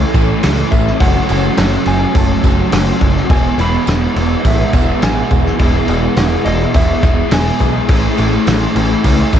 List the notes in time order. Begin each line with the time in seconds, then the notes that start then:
Already playing: A2 E3 A3 C#4 E4 A4 C#5 B5
0.13 A1 A2 E3 A3 C#4 E4, kick, tambourine, crash
0.42 C#2 A2 E3 A3 C#4 E4, snare, tambourine, crash
0.71 A1 A3 C#4 E4 E5, kick, tambourine, crash
0.87 snare
0.99 F#1 F#2 C#3 F#3 A3 C#4 F#4 F#5 A5 E6, kick, tambourine, crash
1.28 F#1 A3 C#4 F#4, tambourine, crash
1.57 F#1 F#3 A3 C#4 F#4, snare, tambourine, crash
1.85 F#1 A3 C#4 F#4 G#5, tambourine, crash
2.14 F#1 F#3 A3 C#4 F#4 A5, kick, tambourine, crash
2.43 F#1 F#2 C#3 F#3 A3 C#4 F#4, kick, snare, tambourine, crash
2.71 F#1 F#2 C#3 F#3 A3 C#4 F#4, snare, tambourine, crash
3.00 F#1 A3 C#4 F#4, kick, crash
3.17 snare
3.28 E1 E2 B2 E3 G#3 B3 E4 G#4 E5 G#5 B5, kick, tambourine, crash
3.58 E1 G#3 B3 E4 B5, tambourine, crash
3.86 E1 E3 G#3 B3 E4, snare, tambourine, crash
4.15 E1 G#3 B3 E4, tambourine, crash
4.44 A1 E3 G#3 B3 E4 E5, kick, tambourine, crash
4.72 E1 E2 B2 E3 G#3 B3 E4, kick, snare, tambourine, crash
5.01 A1 E2 B2 E3 G#3 B3 E4 G#5, snare, tambourine, crash
5.29 E1 G#3 B3 E4, kick, tambourine, crash
5.46 snare
5.58 E1 E2 B2 E3 G#3 B3 E4 D#6, kick, tambourine, crash
5.87 E1 G#3 B3 E4, tambourine, crash
6.16 E1 E3 G#3 B3 E4, snare, tambourine, crash
6.44 E1 G#3 B3 E4 D#5, tambourine, crash
6.73 E1 E3 G#3 B3 E4 E5, kick, tambourine, crash
7.02 E1 E2 B2 E3 G#3 B3 E4, kick, snare, tambourine, crash
7.30 E1 E2 B2 E3 G#3 B3 E4 G#5, snare, tambourine, crash
7.59 B1 G#3 B3 E4, kick, tambourine, crash
7.87 A1 A2 E3 A3 C#4 E4 A4 C#5 E6, kick, tambourine, crash
7.91 A3
8.16 A1 A3 C#4 E4, tambourine, crash
8.45 A1 E3 A3 C#4 E4, snare, tambourine, crash
8.74 A1 A3 C#4 E4, tambourine, crash
9.03 C#2 A2 E3 A3 C#4 E4, kick, tambourine, crash
9.31 A1 A2 E3 A3 C#4 E4, kick, snare, tambourine, crash